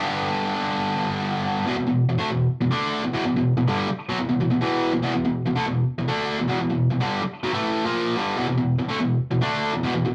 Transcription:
Already playing: G2 D3 G3 B3
0.00 D4 G4
1.67 E2 B2
1.77 E2 B2
1.87 E2 B2
2.09 E2 B2
2.18 D3 A3
2.30 E2 B2
2.61 E2 B2
2.71 D3 A3 D4
3.03 E2 B2
3.13 E2 B2
3.26 E2 B2
3.36 E2 B2
3.57 E2 B2
3.67 G2 D3 G3
3.89 muted distorted electric guitar stroke
4.09 B2 F#3
4.19 E2 B2
4.29 E2 B2
4.41 E2 B2
4.51 E2 B2
4.61 E2 B2 E3
4.93 E2 B2
5.02 E2 B2
5.14 E2 B2
5.25 E2 B2
5.46 E2 B2
5.56 D3 A3
5.66 E2 B2
5.98 E2 B2
6.08 D3 A3 D4
6.39 E2 B2
6.48 E2 B2
6.61 E2 B2
6.70 E2 B2
6.91 E2 B2
7.01 G2 D3 G3
7.23 muted distorted electric guitar stroke
7.43 B2 F#3
7.53 A2 E3 A3
7.85 A#2 F3 A#3
8.16 G2 D3 G3
8.37 E2 B2
8.48 E2 B2
8.57 E2 B2
8.79 E2 B2
8.89 D3 A3
9.00 E2 B2
9.31 E2 B2
9.42 D3 A3 D4
9.74 E2 B2
9.83 E2 B2
9.94 E2 B2
10.05 E2 B2

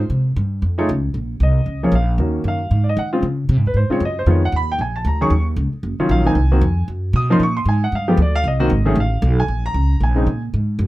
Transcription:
0.10 C3
0.36 G2
0.62 F2
0.78 A3 D#4 F4 G#4 C#5
0.89 C#2
1.14 A#1
1.40 C2 D#5
1.66 C#2
1.83 F3 A#3 C#4 G#4 C#5
1.92 A#1 F5
2.18 D#2 D#3 A#3 C#4 F#4
2.44 F#2 F5
2.71 G#2
2.84 D5
2.89 D#5
2.97 D#3 F#5
3.13 C#3 G#3 C4 F4
3.23 C#3
3.49 C3
3.57 G#2
3.66 F2 B4
3.74 G#2 C5
3.90 C#3 G#3 C4 F4 C#5, muted upright bass stroke
4.00 F#2
4.05 D#5
4.19 C5
4.26 F2 D#3 G#3 B3 F4
4.30 C#5
4.45 F#5
4.52 D#2
4.56 B5
4.72 G5
4.79 A#1 G#5
4.96 A5
5.05 D2 A#5
5.21 D#3 F#3 C#4 G#4 C#6
5.30 D#2
5.56 C#2
5.73 muted upright bass stroke
5.83 F#1
5.99 D#3 F#3 C#4 F4 C#5, muted upright bass stroke
6.09 A#1 F5
6.25 D#3 A#3 C4 D#4 G#5
6.35 C2
6.51 D#3 A#3 C4 F#4
6.61 F2
6.88 F#2
7.13 B2 D#6
7.30 F3 A#3 C#4 D#4 C6
7.40 A#2 C#6
7.57 C6
7.65 G#2 G#5
7.84 F#5
7.92 G2 F5
8.08 F3 G#3 B3 G4 A4
8.17 D2
8.22 D5
8.36 F5
8.44 C2 D#5
8.60 D#3 A#3 C4 F#4
8.70 G#1
8.85 D#3 A3 C#4 G#4
8.96 A1
9.00 F5
9.22 B1
9.40 G#5
9.48 A#1
9.66 A#5
9.74 C#2
10.00 A#1 G#5
10.15 C#3 G#3 C4 D#4
10.27 A#2
10.54 G#2
10.79 F#2

